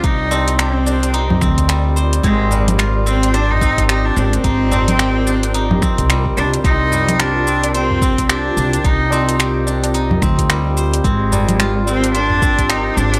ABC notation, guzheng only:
X:1
M:4/4
L:1/16
Q:"Swing 16ths" 1/4=109
K:Cm
V:1 name="Guzheng"
E z C2 G2 D2 E z C2 G,2 c z | C z G,2 F2 C z c z C2 G2 D2 | E z C2 G2 D2 E z C2 G,2 c z | C z G,2 F2 C z c z C2 G2 D2 |
E z C2 G2 D2 E z C2 G,2 c z | C z G,2 F2 C z c z C2 G2 D2 |]